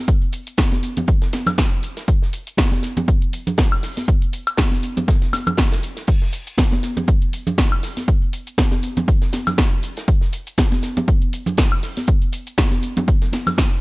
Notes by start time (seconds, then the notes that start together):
0.08 kick, closed hi-hat, shaker
0.22 closed hi-hat
0.32 closed hi-hat, open hi-hat, shaker
0.47 closed hi-hat, shaker
0.57 kick, snare, closed hi-hat, high conga, shaker
0.72 snare, closed hi-hat, high conga
0.83 closed hi-hat, open hi-hat, shaker
0.97 closed hi-hat, high conga, low conga, shaker
1.08 kick, closed hi-hat, shaker
1.22 snare, closed hi-hat
1.33 snare, closed hi-hat, open hi-hat, high conga, shaker
1.47 snare, closed hi-hat, low conga, high woodblock, shaker
1.58 kick, snare, closed hi-hat, shaker
1.83 closed hi-hat, open hi-hat, shaker
1.97 snare, closed hi-hat, shaker
2.08 kick, closed hi-hat, shaker
2.22 snare
2.33 closed hi-hat, open hi-hat, shaker
2.47 closed hi-hat, shaker
2.57 kick, snare, closed hi-hat, high conga, shaker
2.72 snare, closed hi-hat, high conga
2.83 snare, closed hi-hat, open hi-hat, shaker
2.97 closed hi-hat, high conga, low conga, shaker
3.08 kick, closed hi-hat, shaker
3.22 closed hi-hat
3.33 closed hi-hat, open hi-hat, shaker
3.47 closed hi-hat, low conga, shaker
3.58 kick, snare, closed hi-hat, shaker
3.72 high woodblock
3.83 snare, open hi-hat, shaker
3.97 snare, closed hi-hat, high conga, shaker
4.08 kick, closed hi-hat, shaker
4.22 closed hi-hat
4.33 closed hi-hat, open hi-hat, shaker
4.47 closed hi-hat, high woodblock, shaker
4.57 kick, snare, closed hi-hat, high conga, shaker
4.71 snare, closed hi-hat, high conga
4.83 closed hi-hat, open hi-hat, shaker
4.97 closed hi-hat, high conga, low conga, shaker
5.08 kick, snare, closed hi-hat, shaker
5.22 snare, closed hi-hat
5.33 snare, closed hi-hat, open hi-hat, high conga, high woodblock, shaker
5.47 closed hi-hat, low conga, high woodblock, shaker
5.57 kick, snare, closed hi-hat, shaker
5.72 snare, closed hi-hat
5.83 closed hi-hat, open hi-hat, shaker
5.97 snare, closed hi-hat, shaker
6.07 kick, closed hi-hat, crash, shaker
6.22 snare
6.32 closed hi-hat, open hi-hat, shaker
6.47 closed hi-hat, shaker
6.58 kick, snare, closed hi-hat, high conga, shaker
6.72 snare, closed hi-hat, high conga
6.83 snare, closed hi-hat, open hi-hat, shaker
6.97 closed hi-hat, high conga, low conga, shaker
7.08 kick, closed hi-hat, shaker
7.22 closed hi-hat
7.33 closed hi-hat, open hi-hat, shaker
7.47 closed hi-hat, low conga, shaker
7.58 kick, snare, closed hi-hat, shaker
7.72 high woodblock
7.83 snare, open hi-hat, shaker
7.97 snare, closed hi-hat, high conga, shaker
8.08 kick, closed hi-hat, shaker
8.22 closed hi-hat
8.33 closed hi-hat, open hi-hat, shaker
8.47 closed hi-hat, shaker
8.58 kick, snare, closed hi-hat, high conga, shaker
8.71 snare, closed hi-hat, high conga
8.83 closed hi-hat, open hi-hat, shaker
8.97 closed hi-hat, high conga, low conga, shaker
9.08 kick, closed hi-hat, shaker
9.22 snare, closed hi-hat
9.32 snare, closed hi-hat, open hi-hat, high conga, shaker
9.47 snare, closed hi-hat, low conga, high woodblock, shaker
9.58 kick, snare, closed hi-hat, shaker
9.83 closed hi-hat, open hi-hat, shaker
9.97 snare, closed hi-hat, shaker
10.08 kick, closed hi-hat, shaker
10.21 snare
10.33 closed hi-hat, open hi-hat, shaker
10.47 closed hi-hat, shaker
10.58 kick, snare, closed hi-hat, high conga, shaker
10.72 snare, closed hi-hat, high conga
10.82 snare, closed hi-hat, open hi-hat, shaker
10.97 closed hi-hat, high conga, low conga, shaker
11.08 kick, closed hi-hat, shaker
11.22 closed hi-hat
11.33 closed hi-hat, open hi-hat, shaker
11.46 closed hi-hat, low conga, shaker
11.57 kick, snare, closed hi-hat, shaker
11.72 high woodblock
11.83 snare, open hi-hat, shaker
11.97 snare, closed hi-hat, high conga, shaker
12.07 kick, closed hi-hat, shaker
12.22 closed hi-hat
12.32 closed hi-hat, open hi-hat, shaker
12.47 closed hi-hat, shaker
12.58 kick, snare, closed hi-hat, high conga, shaker
12.72 snare, closed hi-hat, high conga
12.83 closed hi-hat, open hi-hat, shaker
12.97 closed hi-hat, high conga, low conga, shaker
13.08 kick, closed hi-hat, shaker
13.22 snare, closed hi-hat
13.32 snare, closed hi-hat, open hi-hat, high conga, shaker
13.47 snare, closed hi-hat, low conga, high woodblock, shaker
13.58 kick, snare, closed hi-hat, shaker